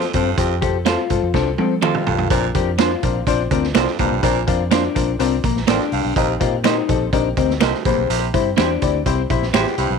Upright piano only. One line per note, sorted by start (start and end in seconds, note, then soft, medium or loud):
0.14 0.28 C4 medium
0.14 0.28 F4 medium
0.14 0.28 A4 loud
0.37 0.52 C4 loud
0.37 0.52 F4 loud
0.37 0.52 G4 loud
0.62 0.76 C4 medium
0.62 0.76 F4 medium
0.62 0.76 A4 loud
0.86 1.00 C4 medium
0.86 1.00 F4 medium
0.86 1.00 A4 medium
1.10 1.24 C4 medium
1.10 1.24 F4 medium
1.10 1.24 A4 loud
1.34 1.48 C4 loud
1.34 1.48 F4 loud
1.34 1.48 A4 loud
1.58 1.72 C4 medium
1.58 1.73 F4 medium
1.58 1.73 A4 loud
1.83 2.06 G4 medium
2.06 2.52 A4 medium
2.30 2.44 C4 loud
2.30 2.45 D4 loud
2.30 2.45 F4 loud
2.30 2.45 A#4 loud
2.55 2.69 C4 medium
2.55 2.69 D4 medium
2.55 2.69 F4 medium
2.55 2.69 A#4 loud
2.79 2.93 C4 medium
2.79 2.93 D4 medium
2.79 2.93 F4 medium
2.79 2.93 A#4 medium
3.03 3.17 C4 medium
3.03 3.17 D4 medium
3.03 3.17 F4 medium
3.03 3.17 A#4 loud
3.27 3.41 C4 loud
3.27 3.41 D4 loud
3.27 3.41 F4 loud
3.27 3.41 C5 loud
3.51 3.65 C4 medium
3.51 3.65 D4 medium
3.51 3.65 F4 medium
3.51 3.65 A#4 loud
3.75 3.89 C4 medium
3.75 3.89 D4 medium
3.75 3.89 F4 medium
3.75 3.89 A#4 loud
3.99 4.13 C4 medium
3.99 4.13 D4 medium
3.99 4.13 F4 medium
3.99 4.13 A#4 loud
4.23 4.37 C4 loud
4.23 4.37 D4 loud
4.23 4.37 F4 loud
4.23 4.37 A#4 loud
4.47 4.61 C4 loud
4.47 4.61 D4 medium
4.47 4.61 F4 medium
4.47 4.61 A#4 loud
4.71 4.85 C4 medium
4.71 4.85 D4 medium
4.71 4.85 F4 medium
4.71 4.85 A#4 medium
4.95 5.09 C4 medium
4.95 5.09 D4 medium
4.95 5.09 F4 medium
4.95 5.09 A#4 loud
5.19 5.33 C4 loud
5.19 5.34 D4 loud
5.19 5.34 F4 loud
5.19 5.34 A#4 loud
5.44 5.67 A#5 medium
5.69 5.91 G5 medium
5.93 6.38 F5 medium
6.16 6.30 C4 loud
6.16 6.30 D#4 loud
6.16 6.30 G4 loud
6.16 6.31 A#4 loud
6.40 6.54 C4 loud
6.40 6.54 D#4 medium
6.40 6.54 G4 medium
6.40 6.55 A#4 loud
6.65 6.79 C4 medium
6.65 6.79 D#4 medium
6.65 6.79 G4 medium
6.65 6.79 A#4 loud
6.88 7.02 C4 loud
6.88 7.03 D#4 medium
6.88 7.03 G4 medium
6.88 7.03 A4 loud
7.13 7.27 C4 loud
7.13 7.27 D#4 loud
7.13 7.27 G4 loud
7.13 7.27 A#4 loud
7.38 7.51 C4 medium
7.38 7.51 D#4 medium
7.38 7.51 G4 medium
7.38 7.51 A#4 medium
7.61 7.75 C4 medium
7.61 7.75 D#4 medium
7.61 7.75 G4 medium
7.61 7.75 A#4 loud
7.86 8.24 C4 loud
7.86 8.24 E4 medium
7.86 8.24 G4 medium
7.86 8.24 C5 loud
8.34 8.47 C4 medium
8.34 8.47 E4 medium
8.34 8.47 G4 medium
8.34 8.48 C5 loud
8.58 8.72 C4 medium
8.58 8.72 E4 medium
8.58 8.72 G4 medium
8.58 8.72 C5 medium
8.82 8.96 C4 medium
8.82 8.96 E4 medium
8.82 8.96 G4 medium
8.82 8.96 D5 medium
9.06 9.20 C4 loud
9.06 9.20 E4 loud
9.06 9.20 G4 loud
9.06 9.20 C5 loud
9.31 9.44 C4 medium
9.31 9.44 E4 medium
9.31 9.44 G4 medium
9.31 9.44 C5 loud
9.54 9.68 C4 medium
9.54 9.68 E4 medium
9.54 9.68 G4 medium
9.54 9.68 C5 loud
9.78 9.92 C4 medium
9.78 9.92 E4 medium
9.78 9.92 G4 medium
9.78 9.92 C5 loud